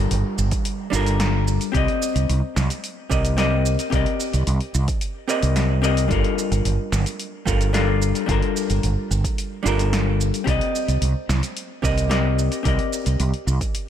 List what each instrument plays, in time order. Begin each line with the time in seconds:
Already playing: hollow-body jazz guitar G3 D4 F4 A4 A#4, downlifter
0.11 fretless electric bass G1, open hi-hat, shaker
0.38 fretless electric bass G1, shaker
0.51 kick, open hi-hat, shaker
0.65 open hi-hat, shaker
0.90 fretless electric bass G1, hollow-body jazz guitar G3 D4 F4, shaker
0.94 hollow-body jazz guitar A4 A#4
1.06 open hi-hat, shaker
1.20 snare, open hi-hat, shaker
1.48 shaker
1.61 open hi-hat, shaker
1.72 fretless electric bass C2, hollow-body jazz guitar C4 G4 D5, kick, open hi-hat, shaker
1.77 hollow-body jazz guitar D#5
1.88 open hi-hat
2.02 shaker
2.15 fretless electric bass C2, open hi-hat, shaker
2.29 fretless electric bass C2, open hi-hat, shaker
2.56 fretless electric bass C2, snare, shaker
2.70 open hi-hat, shaker
2.84 open hi-hat, shaker
3.10 fretless electric bass C2, hollow-body jazz guitar C4 G4 A#4 D5 D#5, kick, shaker
3.25 open hi-hat, shaker
3.37 hollow-body jazz guitar C4 G4 A#4 D5 D#5, snare, open hi-hat, shaker
3.66 shaker
3.79 open hi-hat, shaker
3.90 fretless electric bass C2, hollow-body jazz guitar C4 G4 A#4 D5, kick, open hi-hat, shaker
3.95 hollow-body jazz guitar D#5
4.06 open hi-hat
4.20 shaker
4.33 fretless electric bass C2, open hi-hat, shaker
4.47 fretless electric bass C2, open hi-hat, shaker
4.61 open hi-hat
4.74 fretless electric bass C2, shaker
4.88 kick, open hi-hat, shaker
5.01 open hi-hat, shaker
5.28 hollow-body jazz guitar C4 G4 A#4 D5 D#5, shaker
5.43 fretless electric bass C2, open hi-hat, shaker
5.56 snare, open hi-hat, shaker
5.82 hollow-body jazz guitar C4 G4 A#4 D5 D#5, shaker
5.97 open hi-hat, shaker
6.08 fretless electric bass G1, hollow-body jazz guitar G3 D4 F4 A4, kick, open hi-hat, shaker
6.13 hollow-body jazz guitar A#4
6.24 open hi-hat
6.39 shaker
6.52 fretless electric bass G1, open hi-hat, shaker
6.65 fretless electric bass G1, open hi-hat, shaker
6.92 fretless electric bass G1, snare, shaker
7.06 open hi-hat, shaker
7.20 open hi-hat, shaker
7.45 fretless electric bass G1, hollow-body jazz guitar G3 D4 F4 A4 A#4, kick, shaker
7.61 open hi-hat, shaker
7.73 hollow-body jazz guitar G3 D4 F4 A4 A#4, snare, open hi-hat, shaker
8.02 shaker
8.15 open hi-hat, shaker
8.26 fretless electric bass G1, hollow-body jazz guitar G3 D4 F4 A4, kick, open hi-hat, shaker
8.31 hollow-body jazz guitar A#4
8.43 open hi-hat
8.57 shaker
8.70 fretless electric bass G1, open hi-hat, shaker
8.83 fretless electric bass G1, open hi-hat, shaker
9.11 fretless electric bass G1, shaker
9.24 kick, open hi-hat, shaker
9.38 open hi-hat, shaker
9.63 fretless electric bass G1, hollow-body jazz guitar G3 D4 F4 A4, shaker
9.68 hollow-body jazz guitar A#4
9.79 open hi-hat, shaker
9.93 snare, open hi-hat, shaker
10.21 shaker
10.34 open hi-hat, shaker
10.44 fretless electric bass C2, hollow-body jazz guitar C4 G4 D5, kick, open hi-hat, shaker
10.50 hollow-body jazz guitar D#5
10.61 open hi-hat
10.76 shaker
10.88 fretless electric bass C2, open hi-hat, shaker
11.02 fretless electric bass C2, open hi-hat, shaker
11.29 fretless electric bass C2, snare, shaker
11.43 open hi-hat, shaker
11.57 open hi-hat, shaker
11.82 fretless electric bass C2, hollow-body jazz guitar C4 G4 A#4 D5 D#5, kick, shaker
11.98 open hi-hat, shaker
12.09 hollow-body jazz guitar C4 G4 A#4 D5 D#5, snare, open hi-hat, shaker
12.39 shaker
12.52 open hi-hat, shaker
12.63 fretless electric bass C2, hollow-body jazz guitar C4 G4 A#4, kick, open hi-hat, shaker
12.67 hollow-body jazz guitar D5 D#5
12.79 open hi-hat
12.93 shaker
13.06 fretless electric bass C2, open hi-hat, shaker
13.20 fretless electric bass C2, open hi-hat, shaker
13.34 open hi-hat
13.47 fretless electric bass C2, shaker
13.61 kick, open hi-hat, shaker
13.75 open hi-hat, shaker